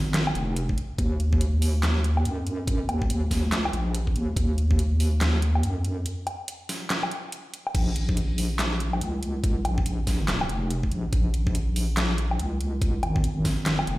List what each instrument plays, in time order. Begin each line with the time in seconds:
Already playing: wobble bass G#1
0.14 snare, clap, closed hi-hat
0.27 low woodblock
0.35 wobble bass F1, closed hi-hat
0.56 closed hi-hat
0.69 kick
0.78 closed hi-hat
0.98 wobble bass D#2, kick, closed hi-hat
1.20 closed hi-hat
1.33 kick
1.41 closed hi-hat
1.62 open hi-hat
1.83 snare, clap, closed hi-hat
2.04 closed hi-hat
2.17 low woodblock
2.25 wobble bass F#2, closed hi-hat
2.47 closed hi-hat
2.68 kick, closed hi-hat
2.89 wobble bass D#2, closed hi-hat, low woodblock
3.02 kick
3.10 closed hi-hat
3.31 kick, snare, open hi-hat
3.48 wobble bass D2
3.52 snare, clap, closed hi-hat
3.65 low woodblock
3.73 wobble bass A#1, closed hi-hat
3.95 closed hi-hat
4.07 kick
4.15 wobble bass D#2, closed hi-hat
4.36 wobble bass D#2, kick, closed hi-hat
4.58 closed hi-hat
4.71 kick
4.79 closed hi-hat
5.00 open hi-hat
5.21 snare, clap, closed hi-hat
5.42 closed hi-hat
5.55 low woodblock
5.63 wobble bass F#2, closed hi-hat
5.85 closed hi-hat
6.06 closed hi-hat
6.27 closed hi-hat, low woodblock
6.48 closed hi-hat
6.69 snare, open hi-hat
6.90 snare, clap, closed hi-hat
7.03 low woodblock
7.11 closed hi-hat
7.32 closed hi-hat
7.54 closed hi-hat
7.67 low woodblock
7.75 wobble bass A#1, kick, closed hi-hat, crash
7.96 closed hi-hat
8.09 kick
8.17 closed hi-hat
8.38 open hi-hat
8.59 snare, clap, closed hi-hat
8.80 closed hi-hat
8.93 low woodblock
9.01 wobble bass C#2, closed hi-hat
9.23 closed hi-hat
9.44 kick, closed hi-hat
9.65 wobble bass A#1, closed hi-hat, low woodblock
9.78 kick
9.86 closed hi-hat
10.07 kick, snare, open hi-hat
10.28 snare, clap, closed hi-hat
10.41 low woodblock
10.49 wobble bass F1, closed hi-hat
10.71 closed hi-hat
10.83 kick
10.91 wobble bass A#1, closed hi-hat
11.13 wobble bass A#1, kick, closed hi-hat
11.34 closed hi-hat
11.47 kick
11.55 closed hi-hat
11.76 open hi-hat
11.97 snare, clap, closed hi-hat
12.18 closed hi-hat
12.31 low woodblock
12.39 wobble bass C#2, closed hi-hat
12.61 closed hi-hat
12.82 kick, closed hi-hat
13.03 wobble bass G#1, closed hi-hat, low woodblock
13.16 kick
13.24 closed hi-hat
13.45 kick, snare, open hi-hat
13.66 snare, clap, closed hi-hat
13.79 low woodblock
13.87 wobble bass F1, closed hi-hat